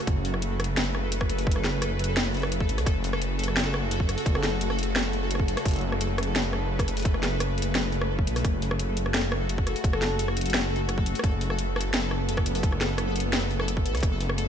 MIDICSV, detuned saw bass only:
0, 0, Header, 1, 2, 480
1, 0, Start_track
1, 0, Key_signature, 3, "minor"
1, 0, Tempo, 348837
1, 105, Time_signature, 4, 2, 24, 8
1, 19924, End_track
2, 0, Start_track
2, 0, Title_t, "Detuned saw bass"
2, 0, Program_c, 0, 39
2, 100, Note_on_c, 0, 30, 100
2, 1048, Note_off_c, 0, 30, 0
2, 1065, Note_on_c, 0, 30, 80
2, 1770, Note_off_c, 0, 30, 0
2, 1782, Note_on_c, 0, 30, 102
2, 2005, Note_off_c, 0, 30, 0
2, 2019, Note_on_c, 0, 30, 101
2, 3704, Note_on_c, 0, 33, 102
2, 3724, Note_off_c, 0, 30, 0
2, 3830, Note_on_c, 0, 37, 85
2, 3851, Note_off_c, 0, 33, 0
2, 3933, Note_off_c, 0, 37, 0
2, 3941, Note_on_c, 0, 30, 99
2, 5730, Note_off_c, 0, 30, 0
2, 5862, Note_on_c, 0, 30, 103
2, 7651, Note_off_c, 0, 30, 0
2, 7782, Note_on_c, 0, 30, 102
2, 8729, Note_off_c, 0, 30, 0
2, 8744, Note_on_c, 0, 30, 82
2, 9449, Note_off_c, 0, 30, 0
2, 9464, Note_on_c, 0, 30, 103
2, 9685, Note_off_c, 0, 30, 0
2, 9704, Note_on_c, 0, 30, 103
2, 11383, Note_on_c, 0, 35, 95
2, 11404, Note_off_c, 0, 30, 0
2, 11605, Note_off_c, 0, 35, 0
2, 11621, Note_on_c, 0, 30, 103
2, 13411, Note_off_c, 0, 30, 0
2, 13539, Note_on_c, 0, 30, 101
2, 15330, Note_off_c, 0, 30, 0
2, 15461, Note_on_c, 0, 30, 101
2, 16408, Note_off_c, 0, 30, 0
2, 16425, Note_on_c, 0, 30, 78
2, 17130, Note_off_c, 0, 30, 0
2, 17145, Note_on_c, 0, 30, 104
2, 17366, Note_off_c, 0, 30, 0
2, 17381, Note_on_c, 0, 30, 103
2, 19067, Note_on_c, 0, 33, 102
2, 19087, Note_off_c, 0, 30, 0
2, 19188, Note_on_c, 0, 37, 85
2, 19208, Note_off_c, 0, 33, 0
2, 19295, Note_off_c, 0, 37, 0
2, 19301, Note_on_c, 0, 30, 100
2, 19924, Note_off_c, 0, 30, 0
2, 19924, End_track
0, 0, End_of_file